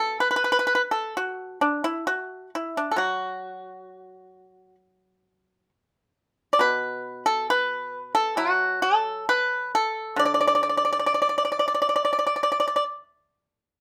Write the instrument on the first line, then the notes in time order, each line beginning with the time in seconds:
pipa
Already playing: B2 A4
0.20 B4
0.31 B4
0.36 B4
0.44 B4
0.52 B4
0.59 B4
0.67 B4
0.75 B4
0.91 A4
1.17 F#4
1.61 D4
1.84 E4
2.07 F#4
2.55 E4
2.77 D4
2.91 A4
2.96 F#3 F#4
6.53 D5
6.59 B2 B4
7.26 A4
7.50 B4
8.15 A4
8.37 F#3 F#4
8.82 A4
9.29 B4
9.75 A4
10.16 D3 D5
10.25 D5
10.34 D5
10.41 D5
10.47 D5
10.55 D5
10.63 D5
10.69 D5
10.77 D5
10.85 D5
10.93 D5
10.99 D5
11.06 D5
11.14 D5
11.22 D5
11.29 D5
11.38 D5
11.45 D5
11.52 D5
11.59 D5
11.68 D5
11.74 D5
11.82 D5
11.89 D5
11.96 D5
12.05 D5
12.13 D5
12.19 D5
12.27 D5
12.36 D5
12.43 D5
12.52 D5
12.60 D5
12.68 D5
12.76 D5